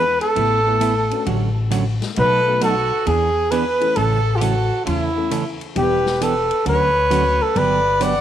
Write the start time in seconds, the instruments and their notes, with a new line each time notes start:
Already playing: upright bass E2, upright piano G#3 B3 D4 E4 G#4, fiddle B4, muted trumpet B4
0.20 fiddle A4, muted trumpet A4, ride
0.35 upright bass A1, hollow-body jazz guitar A3 B3 E4 B4, ride
0.66 upright piano A3 B3 E4 A4 B4
0.80 hollow-body jazz guitar A3 B3 E4 B4, hi-hat pedal, ride
1.11 upright piano A3 C#4 D4 F#4 B4, ride
1.26 upright bass A1, hollow-body jazz guitar D3 F#3 A3 C#4 F#4, ride
1.71 hollow-body jazz guitar D3 F#3 A3 C#4 F#4, hi-hat pedal, ride
2.02 snare, ride
2.16 upright bass B1, hollow-body jazz guitar B2 F#3 A3 D#4 F#4, fiddle A4, muted trumpet B4, ride
2.46 upright piano A3 B3 D#4 F#4 A4
2.61 hollow-body jazz guitar B2 F#3 A3 D#4 F#4, fiddle F#4, muted trumpet A4, hi-hat pedal, ride
3.06 upright bass E2, hollow-body jazz guitar E3 B3 D4 G#4, fiddle G#4, muted trumpet G#4, ride
3.51 hollow-body jazz guitar E3 B3 D4 G#4, muted trumpet B4, fiddle B4, hi-hat pedal, ride
3.80 upright piano E3 A3 C#4 E4 A4, ride
3.96 upright bass A1, hollow-body jazz guitar C#3 E3 A3 C#4 A4, muted trumpet A4, fiddle A4, ride
4.36 muted trumpet F4, fiddle G4
4.40 hollow-body jazz guitar C#3 E3 A3 C#4 A4, muted trumpet F#4, fiddle A4, hi-hat pedal, ride
4.85 upright bass E2, hollow-body jazz guitar C#3 E3 A3 C#4 A4, fiddle E4, muted trumpet E4, ride
5.16 upright piano E3 A3 C#4 E4 A4
5.31 hollow-body jazz guitar C#3 E3 A3 C#4 A4, hi-hat pedal, ride
5.61 ride
5.75 upright bass E1, hollow-body jazz guitar E3 B3 D4 G4, upright piano G3 B3 D4 E4 G4, muted trumpet G4, fiddle B4, ride
6.06 snare
6.21 hollow-body jazz guitar E3 B3 D4 G4, muted trumpet A4, fiddle B4, hi-hat pedal, ride
6.51 ride
6.65 upright bass D2, hollow-body jazz guitar D3 F#3 A3 C#4 F#4, muted trumpet B4, fiddle C#5, ride
7.10 hollow-body jazz guitar D3 F#3 A3 C#4 F#4, upright piano F#3 A3 C#4 D4 F#4, hi-hat pedal, ride
7.42 muted trumpet A4, fiddle B4
7.55 upright bass G1, hollow-body jazz guitar D3 F#3 B3 D4 G4, muted trumpet B4, fiddle D5, ride
8.00 hollow-body jazz guitar D3 F#3 B3 D4 G4, muted trumpet D5, fiddle F#5, hi-hat pedal, ride